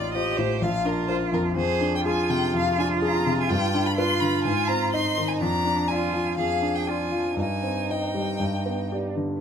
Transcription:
0.00 0.59 A1 medium
0.00 0.28 D#4 soft
0.00 0.17 F4 medium
0.00 0.12 D5 medium
0.13 0.36 F4 soft
0.13 0.65 G4 medium
0.13 0.36 C5 soft
0.13 0.39 D#5 medium
0.37 0.62 A2 soft
0.37 0.64 C5 medium
0.62 1.55 A#1 medium
0.62 1.57 F4 medium
0.62 0.87 F5 medium
0.85 1.24 D4 soft
0.85 1.07 A#4 medium
1.08 1.31 F4 soft
1.08 1.31 A#4 soft
1.08 1.16 C5 medium
1.32 1.55 F2 soft
1.32 1.41 A#4 medium
1.56 2.50 F2 medium
1.56 2.03 G#4 medium
1.56 1.93 C5 medium
1.81 2.20 D4 soft
1.96 2.00 G5 medium
2.04 3.93 F4 medium
2.04 2.27 F4 soft
2.04 2.28 G#4 medium
2.04 2.32 G#5 medium
2.30 2.68 C3 soft
2.30 2.54 G5 medium
2.54 3.47 F2 soft
2.54 2.79 F5 medium
2.78 3.17 D4 medium
2.78 2.87 G#5 medium
3.02 3.24 F4 soft
3.02 3.24 G#4 medium
3.02 3.39 A#5 medium
3.26 3.50 C3 soft
3.41 3.51 G#5 medium
3.50 4.43 G2 medium
3.50 3.88 G5 medium
3.74 4.12 D4 soft
3.86 3.96 B5 medium
3.97 4.95 F4 medium
3.97 4.19 F4 soft
3.97 4.19 B4 medium
3.97 4.21 C6 medium
4.20 4.45 D3 soft
4.20 4.44 B5 medium
4.44 5.39 G#2 medium
4.44 4.69 G#5 medium
4.68 5.08 C4 medium
4.68 4.92 A#5 medium
4.92 5.15 D#4 soft
4.92 5.43 D#4 medium
4.92 5.15 D#5 medium
4.92 5.30 C6 medium
5.17 5.42 D#3 medium
5.28 5.39 G#5 medium
5.39 6.35 F2 medium
5.39 5.90 D4 medium
5.39 5.90 A#5 loud
5.65 6.04 D4 soft
5.88 6.12 F4 soft
5.88 6.38 F4 medium
5.88 6.12 D5 soft
5.88 6.36 G#5 medium
6.14 6.53 F3 soft
6.37 7.35 F2 soft
6.37 6.89 G#4 medium
6.37 6.77 F5 medium
6.62 7.02 D4 soft
6.76 6.89 G5 medium
6.87 7.10 F4 soft
6.87 7.38 F4 medium
6.87 7.10 D5 soft
6.87 7.38 G#5 medium
7.12 7.38 F3 soft
7.37 8.37 G2 soft
7.37 9.13 D#4 medium
7.37 7.93 G#5 medium
7.63 8.04 C4 soft
7.90 8.13 D#4 soft
7.90 8.13 D#5 soft
7.90 8.92 G5 medium
8.14 8.40 G3 soft
8.40 9.38 G2 soft
8.66 9.06 B3 soft
8.92 9.14 G4 soft
8.92 9.14 D5 soft
9.16 9.41 D3 soft

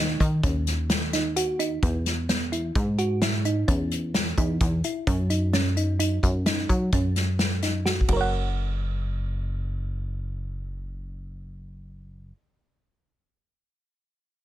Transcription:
0.00 0.16 D#2 medium
0.00 0.35 D#4 medium
0.20 0.42 D#3 medium
0.20 kick medium
0.20 closed hi-hat medium
0.43 1.78 D#2 medium
0.43 0.81 C#4 medium
0.43 kick medium
0.43 closed hi-hat medium
0.67 snare soft
0.67 closed hi-hat medium
0.90 snare medium
0.90 closed hi-hat medium
1.13 1.32 D#4 medium
1.13 snare soft
1.13 closed hi-hat medium
1.36 1.55 F#4 medium
1.36 closed hi-hat medium
1.59 1.78 D#4 medium
1.59 closed hi-hat soft
1.83 2.71 E2 medium
1.83 2.21 B3 medium
1.83 kick medium
1.83 closed hi-hat medium
2.06 snare soft
2.06 closed hi-hat soft
2.29 2.48 B3 medium
2.29 snare medium
2.29 closed hi-hat medium
2.52 2.90 E4 medium
2.52 closed hi-hat soft
2.75 3.64 G#2 medium
2.75 kick medium
2.75 closed hi-hat medium
2.98 3.17 F#4 medium
2.98 closed hi-hat soft
3.22 3.41 E4 medium
3.22 snare medium
3.22 closed hi-hat medium
3.45 3.64 D#4 medium
3.45 closed hi-hat soft
3.68 4.34 E2 medium
3.68 4.06 C#4 medium
3.68 kick medium
3.68 closed hi-hat medium
3.91 closed hi-hat soft
4.14 snare medium
4.14 closed hi-hat medium
4.38 4.59 E2 medium
4.38 4.76 D#4 medium
4.38 kick medium
4.38 closed hi-hat medium
4.61 4.82 E2 medium
4.61 kick loud
4.61 closed hi-hat medium
4.84 5.03 E4 medium
4.84 closed hi-hat medium
5.07 6.19 F#2 medium
5.07 5.26 C#4 medium
5.07 kick medium
5.07 closed hi-hat medium
5.30 5.49 D#4 medium
5.30 closed hi-hat soft
5.53 5.72 C#4 medium
5.53 snare medium
5.53 closed hi-hat medium
5.77 5.96 D#4 medium
5.77 closed hi-hat soft
5.99 6.38 D#4 medium
5.99 closed hi-hat medium
6.23 6.66 F#2 medium
6.23 kick medium
6.23 closed hi-hat medium
6.46 6.84 D#4 medium
6.46 snare medium
6.46 closed hi-hat medium
6.69 6.91 F#3 medium
6.69 kick medium
6.69 closed hi-hat soft
6.92 8.04 F#2 medium
6.92 7.31 C#4 medium
6.92 kick medium
6.92 closed hi-hat medium
7.16 snare soft
7.16 closed hi-hat soft
7.39 snare medium
7.39 closed hi-hat medium
7.62 7.81 D#4 medium
7.62 snare soft
7.62 closed hi-hat soft
7.85 8.04 F#4 medium
7.85 snare soft
8.01 kick soft
8.08 12.32 F#1 medium
8.08 13.02 F#4 medium
8.08 kick medium
8.08 ride medium
8.13 13.04 A#4 medium
8.13 13.06 C#5 medium
8.21 13.08 F#5 medium

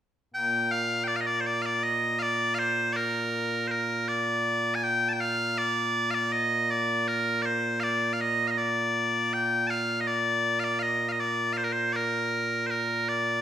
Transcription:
0.34 13.42 A#2 medium
0.34 13.42 A#3 medium
0.34 0.71 G5 loud
0.71 1.04 F5 medium
1.04 1.16 D5 medium
1.04 1.08 G5 medium
1.16 1.21 F5 medium
1.21 1.27 D#5 medium
1.27 1.41 D5 loud
1.41 1.46 C5 medium
1.46 1.62 D5 medium
1.62 1.83 D5 medium
1.62 1.66 F5 medium
1.83 2.19 D#5 medium
2.19 2.54 D5 medium
2.19 2.22 F5 medium
2.54 2.59 F5 loud
2.59 2.93 C5 loud
2.93 3.67 A#4 medium
2.93 2.96 D5 medium
3.67 4.08 A#4 medium
3.67 3.71 C5 medium
4.08 4.75 D5 medium
4.75 4.83 G#5 medium
4.83 5.09 G5 loud
5.09 5.13 A5 medium
5.13 5.21 G5 medium
5.21 5.58 F5 loud
5.58 6.11 D5 medium
6.11 6.32 D5 medium
6.11 6.14 F5 medium
6.32 6.71 D#5 medium
6.71 7.08 D5 medium
7.08 7.42 A#4 medium
7.42 7.80 C5 medium
7.42 7.45 D5 medium
7.80 8.13 D5 medium
7.80 7.83 F5 medium
8.13 8.21 F5 medium
8.21 8.47 D#5 medium
8.47 8.58 D#5 medium
8.47 8.51 F5 medium
8.58 9.33 D5 medium
9.33 9.67 G5 medium
9.67 10.01 F5 medium
9.67 9.70 A5 medium
10.01 10.07 D#5 medium
10.07 10.60 D5 medium
10.60 10.64 F5 medium
10.64 10.79 D5 medium
10.79 11.09 D#5 medium
10.79 10.82 F5 medium
11.09 11.20 D#5 medium
11.09 11.12 F5 medium
11.20 11.53 D5 medium
11.53 11.57 F5 medium
11.57 11.64 C5 medium
11.64 11.72 A#4 medium
11.72 11.93 C5 medium
11.93 12.66 A#4 medium
11.93 11.96 D5 medium
12.66 12.70 C5 medium
12.70 13.09 A#4 medium
13.09 13.42 D5 medium

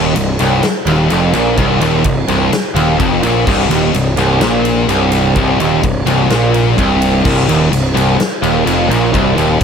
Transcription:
0.00 0.15 D#1 medium
0.00 0.16 D#2 loud
0.16 0.38 C1 medium
0.16 0.35 C2 medium
0.16 ride loud
0.39 0.61 C1 loud
0.39 0.63 C2 loud
0.39 ride medium
0.63 muted picked electric bass stroke soft
0.63 muted overdriven electric guitar stroke medium
0.63 muted distorted electric guitar stroke medium
0.63 snare loud
0.63 ride medium
0.85 1.08 D#1 loud
0.85 1.10 D#2 loud
0.85 ride medium
1.10 1.32 F1 medium
1.10 1.34 F2 loud
1.10 ride loud
1.33 1.55 A#1 medium
1.33 1.57 A#2 loud
1.33 ride medium
1.57 1.79 C1 loud
1.57 1.80 C2 loud
1.57 kick medium
1.57 ride loud
1.80 2.02 D#1 medium
1.80 2.04 D#2 loud
1.80 ride medium
2.04 2.27 C1 medium
2.04 2.24 C2 medium
2.04 kick loud
2.04 ride loud
2.27 2.50 C1 medium
2.27 2.51 C2 loud
2.27 ride medium
2.50 muted picked electric bass stroke soft
2.50 muted distorted electric guitar stroke medium
2.50 muted overdriven electric guitar stroke medium
2.50 snare loud
2.50 ride loud
2.74 2.97 D#1 loud
2.74 2.99 D#2 loud
2.74 ride medium
2.99 3.21 F1 medium
2.99 3.22 F2 loud
2.99 kick medium
2.99 ride loud
3.22 3.44 A#1 loud
3.22 3.46 A#2 loud
3.22 ride medium
3.47 3.69 C1 loud
3.47 3.70 C2 loud
3.47 kick loud
3.47 crash loud
3.70 3.92 D#1 medium
3.70 3.93 D#2 loud
3.70 snare soft
3.70 ride medium
3.93 4.15 C1 medium
3.93 4.13 C2 medium
3.93 ride loud
4.16 4.39 C1 loud
4.16 4.41 C2 loud
4.16 ride medium
4.40 4.84 A#1 medium
4.40 4.88 A#2 loud
4.40 snare loud
4.40 ride loud
4.65 ride medium
4.88 5.32 C1 medium
4.88 5.35 C2 loud
4.88 ride loud
5.12 ride medium
5.36 5.57 C1 loud
5.36 5.59 C2 loud
5.36 kick medium
5.36 ride loud
5.59 5.81 D#1 medium
5.59 5.82 D#2 loud
5.59 ride medium
5.83 6.05 C1 medium
5.83 6.02 C2 medium
5.83 kick loud
5.83 ride loud
6.05 6.28 C1 medium
6.05 6.30 C2 loud
6.05 ride medium
6.29 6.73 A#1 loud
6.29 6.76 A#2 loud
6.29 snare loud
6.29 ride loud
6.54 ride medium
6.78 7.22 C1 loud
6.78 7.24 C2 loud
6.78 kick medium
6.78 ride loud
7.02 ride medium
7.25 7.46 C1 medium
7.25 7.47 C2 loud
7.25 kick loud
7.25 crash loud
7.48 7.70 D#1 loud
7.48 7.71 D#2 loud
7.48 snare soft
7.48 ride medium
7.71 7.94 C1 medium
7.71 7.90 C2 medium
7.71 ride loud
7.94 8.17 C1 loud
7.94 8.18 C2 loud
7.94 ride medium
8.19 muted distorted electric guitar stroke medium
8.19 muted overdriven electric guitar stroke medium
8.19 muted picked electric bass stroke soft
8.19 snare medium
8.19 ride medium
8.42 8.64 D#1 medium
8.42 8.65 D#2 medium
8.42 ride medium
8.65 8.88 F1 medium
8.65 8.88 F2 loud
8.65 ride loud
8.89 9.11 A#1 loud
8.89 9.13 A#2 loud
8.89 ride medium
9.13 9.36 C1 loud
9.13 9.36 C2 loud
9.13 kick medium
9.13 ride medium
9.37 9.59 D#1 loud
9.37 9.60 D#2 loud
9.37 ride medium
9.61 9.64 C1 medium
9.61 9.64 C2 medium
9.61 kick medium

